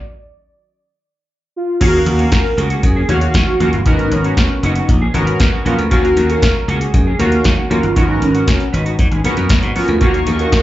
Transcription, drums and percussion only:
1.81 kick, closed hi-hat, crash
1.94 closed hi-hat
2.06 closed hi-hat, muted conga
2.19 closed hi-hat
2.32 kick, snare, closed hi-hat, high conga
2.58 closed hi-hat
2.70 closed hi-hat
2.83 kick, closed hi-hat, muted conga, low conga
3.09 closed hi-hat, muted conga, low conga
3.21 closed hi-hat
3.34 kick, snare, closed hi-hat, high conga
3.60 closed hi-hat, high conga
3.73 closed hi-hat
3.86 kick, closed hi-hat, muted conga
3.99 closed hi-hat
4.11 closed hi-hat, muted conga
4.24 closed hi-hat
4.37 kick, snare, closed hi-hat, high conga
4.63 closed hi-hat
4.76 closed hi-hat
4.89 kick, closed hi-hat, muted conga
5.14 closed hi-hat, muted conga, low conga
5.27 closed hi-hat
5.40 kick, snare, closed hi-hat, high conga
5.66 closed hi-hat, high conga
5.79 closed hi-hat
5.91 kick, closed hi-hat
6.05 closed hi-hat
6.17 closed hi-hat, muted conga
6.30 closed hi-hat
6.42 kick, snare, closed hi-hat, high conga
6.69 closed hi-hat
6.81 closed hi-hat
6.94 kick, closed hi-hat, muted conga, low conga
7.20 closed hi-hat, muted conga, low conga
7.32 closed hi-hat
7.44 kick, snare, closed hi-hat, high conga
7.71 closed hi-hat, high conga
7.83 closed hi-hat
7.96 kick, closed hi-hat, muted conga
8.22 closed hi-hat, muted conga
8.35 closed hi-hat
8.47 kick, snare, closed hi-hat, high conga
8.60 closed hi-hat
8.74 closed hi-hat
8.86 closed hi-hat
8.99 kick, closed hi-hat, muted conga
9.12 closed hi-hat
9.24 closed hi-hat, muted conga, low conga
9.37 closed hi-hat
9.49 kick, snare, closed hi-hat, high conga
9.63 closed hi-hat
9.76 open hi-hat, high conga
9.88 closed hi-hat
10.01 kick, closed hi-hat
10.14 closed hi-hat
10.27 closed hi-hat, muted conga
10.39 closed hi-hat
10.52 kick, snare, closed hi-hat, high conga

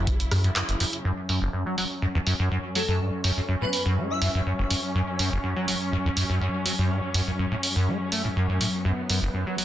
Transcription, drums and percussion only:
0.07 kick, closed hi-hat
0.20 closed hi-hat
0.31 cross-stick, open hi-hat
0.44 closed hi-hat
0.56 clap, closed hi-hat
0.69 closed hi-hat
0.80 open hi-hat
0.93 closed hi-hat
1.29 open hi-hat
1.78 open hi-hat
2.27 open hi-hat
2.75 open hi-hat
3.24 open hi-hat
3.73 open hi-hat
4.22 open hi-hat
4.70 open hi-hat
5.19 open hi-hat
5.68 open hi-hat
6.17 open hi-hat
6.66 open hi-hat
7.14 open hi-hat
7.63 open hi-hat
8.12 open hi-hat
8.61 open hi-hat
9.10 open hi-hat
9.58 open hi-hat

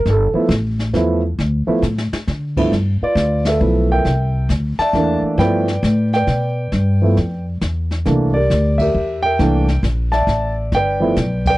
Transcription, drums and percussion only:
0.06 brush sweep, snare
0.50 snare, hi-hat pedal
0.79 snare
0.95 snare
1.39 brush sweep, snare
1.83 snare, hi-hat pedal
1.98 snare
2.13 snare
2.27 snare
2.57 kick, crash
2.73 brush sweep, snare
3.16 snare, hi-hat pedal
3.45 snare, ride
4.05 brush sweep, snare
4.50 snare, hi-hat pedal
4.79 snare
4.95 snare
5.39 brush sweep, snare
5.68 snare
5.84 snare, hi-hat pedal
6.13 snare
6.27 snare
6.72 brush sweep, snare
7.17 snare
7.61 snare, hi-hat pedal
7.91 snare
8.05 brush sweep, snare
8.50 snare, hi-hat pedal
8.79 kick, ride
9.39 brush sweep, snare
9.68 snare
9.83 snare, hi-hat pedal
10.13 snare
10.28 snare
10.72 brush sweep, snare
11.16 snare, hi-hat pedal
11.46 kick, ride

